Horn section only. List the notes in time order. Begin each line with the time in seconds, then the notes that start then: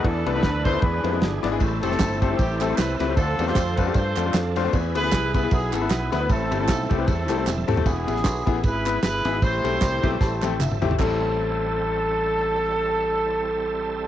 0.03 D4 A4
0.33 D4 B4
0.64 C5
0.82 D4 G#4 B4
1.82 C4 E4 A4
2.21 A4
2.38 C4 E4 G4
2.61 A4
2.76 B4
2.98 B4
3.16 C4 F4 A4
3.46 F4 A4 C5
3.77 A4
3.94 F4 A4 C5
4.96 E4 G#4 B4
5.35 B4
5.52 B3 E4 G#4
5.74 A4
5.91 B4
6.13 B4
6.30 C4 E4 A4
6.61 C4 E4 A4
6.92 G4
7.08 C4 E4 A4
7.86 B3 E4 G#4
8.64 E4 G#4 B4
9.03 E4 G#4 B4
9.42 E4 G4 C5
10.99 A4